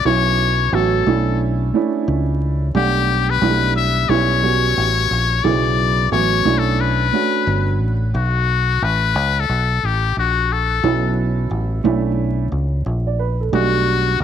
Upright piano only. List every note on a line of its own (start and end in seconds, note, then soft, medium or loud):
0.05 0.65 F#3 medium
0.05 0.65 B3 medium
0.05 0.65 C#4 medium
0.05 0.66 E4 medium
0.72 1.06 F#3 medium
0.72 1.06 B3 medium
0.72 1.05 C#4 medium
0.72 1.07 F#4 medium
1.06 1.66 A3 medium
1.06 1.66 C#4 medium
1.06 1.67 D4 medium
1.06 1.67 E4 medium
1.74 2.64 A3 medium
1.74 2.64 C#4 medium
1.74 2.64 D4 medium
1.74 2.64 E4 loud
2.75 3.35 G3 medium
2.75 3.35 A3 medium
2.75 3.35 D4 medium
2.75 3.35 F#5 medium
3.41 3.50 F#3 medium
3.41 4.10 A3 medium
3.41 4.10 D4 medium
3.41 4.09 E4 medium
3.48 4.07 G3 medium
4.09 4.39 G3 medium
4.09 4.39 B3 medium
4.09 4.40 C#4 medium
4.09 4.40 E4 medium
4.42 5.33 G3 medium
4.42 5.33 B3 medium
4.42 5.33 C#4 medium
4.42 5.33 F#4 medium
5.44 6.04 C#3 medium
5.44 6.04 F#3 medium
5.44 6.04 B3 medium
5.44 6.05 E4 medium
6.11 6.45 F#3 medium
6.11 6.45 B3 medium
6.11 6.44 C#4 medium
6.11 6.46 F#4 medium
6.45 7.05 A3 medium
6.45 7.05 C#4 medium
6.45 7.06 D4 medium
6.45 7.06 E4 medium
7.13 8.03 A3 medium
7.13 8.03 C#4 medium
7.13 8.03 D4 medium
7.13 8.04 F#4 medium
10.83 11.85 F#3 medium
10.83 11.85 B3 medium
10.83 11.83 C#4 medium
10.83 11.84 E4 medium
11.84 12.44 A3 loud
11.84 12.45 C#4 medium
11.84 12.45 D4 medium
11.84 12.45 E4 loud
13.07 13.19 D5 medium
13.19 13.40 B4 medium
13.40 13.73 A4 medium
13.52 14.24 G3 medium
13.52 14.24 A3 medium
13.52 14.24 D4 medium
13.52 14.24 F#4 medium